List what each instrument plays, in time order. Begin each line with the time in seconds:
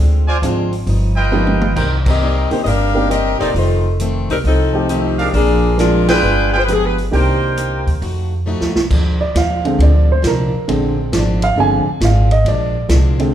Already playing: upright bass D2, steel-string acoustic guitar D3
0.00 steel-string acoustic guitar G#3 C4 F4
0.27 trumpet section F4 C5 D5 G#5
0.42 upright bass G#1, steel-string acoustic guitar D3 G#3 C4 F4, grand piano F3 G#3 C4 D4 F4, closed hi-hat
0.73 open hi-hat
0.86 upright bass G1, steel-string acoustic guitar G2 F3 B3 D#4, open hi-hat
1.16 trumpet section F4 B4 D#5 G5
1.31 steel-string acoustic guitar G2 F3 B3 D#4, grand piano F3 A#3 B3 D#4 G4, high tom
1.47 high tom
1.61 mid tom
1.75 upright bass C2, steel-string acoustic guitar C3 G3 A#3 D#4, trumpet section D#4 A#4 C5 G5, kick, crash
2.06 saxophone section C4 G4 A#4 D#5, kick, crash
2.21 steel-string acoustic guitar C3 G3 A#3 D#4
2.51 grand piano D#3 A#3 C4 D4 G4, saxophone section A#3 D#4 G4 C5, muted upright bass stroke, open hi-hat
2.63 upright bass G1, steel-string acoustic guitar C3, saxophone section D4 A#4 D#5, open hi-hat
2.67 steel-string acoustic guitar G3 A#3 D#4, saxophone section G4 F5
2.95 grand piano D#3 A#3 C4 D4 G4
3.09 steel-string acoustic guitar C3 G3 A#3 D#4, saxophone section C4 G4 A#4 D5 D#5, closed hi-hat
3.39 upright bass E1, saxophone section A#3 D#4 G4 D5, trumpet section D#4 A4 C5 D#5, open hi-hat
3.54 upright bass F1, steel-string acoustic guitar F2 D#3 A3 C4, saxophone section A3 D#4 F4 C5, open hi-hat
4.00 steel-string acoustic guitar F2 D#3 A3 C4, closed hi-hat
4.29 upright bass C2, saxophone section G3 C4 D#4 A#4, open hi-hat
4.44 upright bass C2, steel-string acoustic guitar F2 D#3 A3 C4, saxophone section F3 C4 D#4 A4, open hi-hat
4.73 grand piano F3 A3 C4 D#4 G4
4.89 steel-string acoustic guitar F2 D#3 A3 C4, saxophone section F3 C4 D#4 G4, closed hi-hat
5.18 trumpet section D4 G#4 A#4 F5, open hi-hat
5.33 upright bass A#1, steel-string acoustic guitar A#2 F3 G#3 D4, saxophone section F3 A#3 D4 G#4, open hi-hat
5.77 steel-string acoustic guitar A#2 F3 G#3 D4, grand piano F3 A#3 C4 D4 G#4, saxophone section G#3 D4 F4 A#4, snare, closed hi-hat
6.08 saxophone section G#3 D4 F4 B4, trumpet section F4 G#4 B4 G5, snare, ride
6.22 upright bass G1, steel-string acoustic guitar G3 B3 F4 G#4
6.53 trumpet section F4 G#4 B4 G5
6.57 saxophone section C5
6.64 grand piano F3, saxophone section B4
6.68 steel-string acoustic guitar G3 B3 F4 G#4, grand piano G#3 B3 D4 G4, saxophone section G#4, closed hi-hat
6.86 saxophone section B4
6.98 open hi-hat
7.11 upright bass C2, steel-string acoustic guitar C3 A#3 D#4 G4, grand piano D#3 A#3 C4 D4 G4, trumpet section A#4 C5 G5, open hi-hat
7.56 steel-string acoustic guitar C3 A#3 D#4 G4, closed hi-hat
7.87 upright bass D#2, open hi-hat
8.00 upright bass F2, steel-string acoustic guitar F3 A3 D#4 F#4, open hi-hat
8.46 steel-string acoustic guitar F3 A3 D#4 F#4
8.61 upright bass D#2, snare
8.76 upright bass B1, snare
8.89 upright bass D2, steel-string acoustic guitar A#2 F3 G#3 D4, kick, crash
9.21 grand piano D5
9.34 upright bass D#2, steel-string acoustic guitar A#2 F3 G#3 D4, grand piano F5, snare, hi-hat pedal, ride
9.65 grand piano D3 G#3 C4, ride
9.79 upright bass D2, steel-string acoustic guitar A#2 F3 G#3, grand piano D5, ride
9.83 steel-string acoustic guitar D4
10.12 grand piano C5
10.22 upright bass C2, steel-string acoustic guitar A#2 F3 G#3 D4, snare, hi-hat pedal, ride
10.27 grand piano A#4
10.54 muted upright bass stroke
10.68 upright bass A#1, steel-string acoustic guitar A#2 F3 G#3 D4, grand piano D3 G#3 C4, ride
11.12 upright bass G#1, steel-string acoustic guitar A#2 F3 G#3 D4, snare, hi-hat pedal, ride
11.42 grand piano F5, ride
11.56 upright bass G1, steel-string acoustic guitar A#2 F3 G#3, grand piano D3 G#3 C4 G#5
11.60 steel-string acoustic guitar D4
11.86 muted upright bass stroke
12.00 upright bass G#1, steel-string acoustic guitar A#2 F3 G#3 D4, snare, hi-hat pedal, ride
12.04 grand piano F5
12.31 grand piano D#5, ride
12.45 upright bass A#1, steel-string acoustic guitar A#2 F3 G#3 D4, grand piano D5, ride
12.89 upright bass C2, steel-string acoustic guitar A#2 F3 G#3 D4, snare, hi-hat pedal, ride
13.19 grand piano D3 G#3 C4, ride